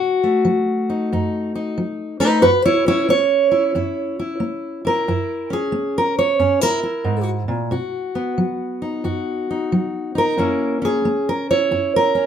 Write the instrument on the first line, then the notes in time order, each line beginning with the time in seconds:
steel-string acoustic guitar
Already playing: B2 F#4
0.24 A3
0.45 F#3
0.90 D#4
1.12 F#2 D#4
1.55 D#4
1.78 F#3
2.20 A3 D#4 B4
2.42 F#2 F#4 B4
2.65 E4 C#5
2.86 C#4 E4 C#5
3.09 A#3 C#5
3.51 E4
3.75 F#2 E4
4.19 E4
4.40 A#3
4.85 E4 A#4
5.08 F#2 E4
5.50 C#4 G#4
5.72 A#3
5.98 A#4
6.19 C#5
6.39 F#2 C#4
6.61 E4 A#4
6.83 E4
7.04 G#2
7.48 A#2
7.71 B2 F#4
8.15 B3
8.38 F#3
8.82 D#4
9.04 F#2 F#4
9.51 D#4
9.72 F#3
10.15 D#4 A#4
10.37 F#2 A#3 C#4 E4
10.82 C#4 G#4
11.05 A#3
11.29 A#4
11.51 E4 C#5
11.71 F#2 E4
11.96 A#4
12.15 C#4